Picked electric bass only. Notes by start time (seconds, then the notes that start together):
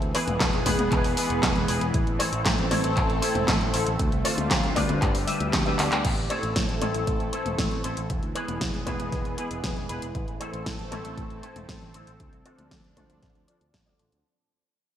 0.02 D2
0.28 E1
0.40 E1
0.53 E1
0.66 E1
0.79 E1
0.92 E1
1.05 E1
1.30 E1
1.43 E1
1.56 E1
1.69 E1
1.81 E1
1.94 A1
2.07 A1
2.33 A1
2.46 A2
2.59 A1
2.71 A1
2.84 A1
2.97 A1
3.10 A1
3.35 E1
3.48 A1
3.61 A1
3.74 A1
3.87 A1
4.00 D2
4.12 C2
4.38 D2
4.51 D2
4.64 D2
4.76 D2
4.89 D2
5.02 G1
5.15 G1
5.41 D2
5.53 D2
5.66 D2
5.79 D2
5.92 D2
6.05 A1
6.18 A1
6.43 A1
6.56 A2
6.69 A1
6.82 A1
6.95 A1
7.07 A1
7.20 A1
7.46 E1
7.59 A1
7.72 A1
7.84 A1
7.97 A1
8.10 E1
8.23 D2
8.48 E1
8.61 E1
8.74 E1
8.87 E1
9.00 E1
9.13 E1
9.51 E1
9.64 E1
9.77 E1
9.90 E1
10.02 E1
10.15 A1
10.28 A1
10.54 A1
10.66 A2
10.79 A1
10.92 A1
11.05 A1
11.18 A1
11.31 A1
11.56 E1
11.69 A1
11.82 A1
11.95 A1
12.07 A1
12.20 D2
12.33 C2
12.59 D2
12.71 D2
12.84 D2
12.97 D2
13.10 D2
13.23 A1
13.35 D2
13.61 D2
13.74 A1
13.87 D2
14.00 A1
14.13 D2